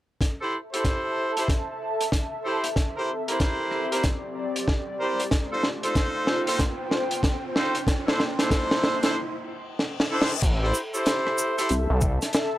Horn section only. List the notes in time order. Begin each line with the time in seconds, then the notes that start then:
0.41 E4 G4 A4 C5
0.73 E4 G4 A4 C5
1.37 E4 G4 A4 C5
2.44 E4 G4 A4 C5
2.96 E4 G4 A#4 C5
3.28 E4 G4 A#4 C5
3.92 E4 G4 A#4 C5
5.00 E4 G4 A#4 C5
5.52 D#4 F4 A4 C5
5.84 D#4 F4 A4 C5
6.47 D#4 F4 A4 C5
7.55 D#4 F4 A4 C5
8.07 D4 E4 A4 C5
8.39 D4 E4 A4 C5
9.03 D4 E4 A4 C5
10.11 D4 E4 A4 C5
10.63 E4 G4 A4 C5
10.94 E4 G4 A4 C5
11.58 E4 G4 A4 C5